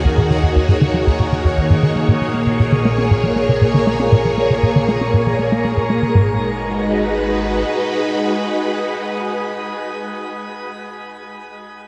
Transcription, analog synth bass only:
0.05 0.09 D#2 medium
0.18 0.28 A#2 medium
0.31 0.38 D#3 medium
0.43 0.54 F#2 medium
0.56 0.67 D#2 medium
0.69 0.76 G#2 medium
0.81 0.86 D#3 medium
0.94 1.01 F#3 medium
1.07 1.11 D#2 medium
1.20 1.30 A#2 medium
1.32 1.39 D#3 medium
1.45 1.55 F#2 medium
1.58 1.68 D#2 medium
1.70 1.77 G#2 medium
1.83 1.87 D#3 medium
1.96 2.03 F#3 medium
2.08 2.13 A#2 medium
2.22 2.32 F3 medium
2.34 2.41 A#3 medium
2.47 2.57 C#3 medium
2.60 2.70 A#2 medium
2.72 2.79 D#3 medium
2.85 2.89 A#3 medium
2.98 3.05 C#4 medium
3.11 3.15 A#2 medium
3.24 3.34 F3 medium
3.36 3.43 A#3 medium
3.49 3.59 C#3 medium
3.61 3.72 A#2 medium
3.74 3.81 D#3 medium
3.87 3.91 A#3 medium
4.00 4.07 C#4 medium
4.12 4.16 A#2 loud
4.25 4.36 F3 medium
4.38 4.45 A#3 medium
4.50 4.61 C#3 medium
4.63 4.73 A#2 medium
4.76 4.83 D#3 medium
4.89 4.93 A#3 medium
5.01 5.08 C#4 medium
5.14 5.18 A#2 medium
5.27 5.37 F3 medium
5.39 5.46 A#3 medium
5.52 5.59 A#3 medium
5.65 5.72 A#3 medium
5.77 5.81 A#2 medium
5.90 6.00 A#3 medium
6.03 6.13 D#3 medium
6.15 6.39 G#2 medium

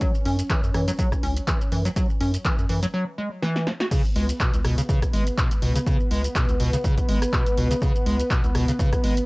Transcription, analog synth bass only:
0.26 0.42 F#2 loud
0.63 0.70 F#2 loud
0.74 0.91 F#2 medium
1.23 1.40 C#2 medium
1.72 1.89 F#2 loud
2.21 2.37 F#2 loud
2.58 2.66 F#2 loud
2.69 2.86 F#2 medium
4.16 4.32 C#2 loud
4.54 4.61 C#2 loud
4.65 4.81 C#2 medium
5.13 5.30 G#1 medium
5.62 5.79 C#2 loud
6.11 6.28 C#2 loud
6.49 6.56 C#2 loud
6.60 6.76 C#2 medium
7.08 7.25 G#1 medium
7.57 7.74 C#2 loud
8.06 8.23 C#2 loud
8.44 8.51 C#2 loud
8.55 8.72 C#2 medium
9.04 9.20 G#1 medium

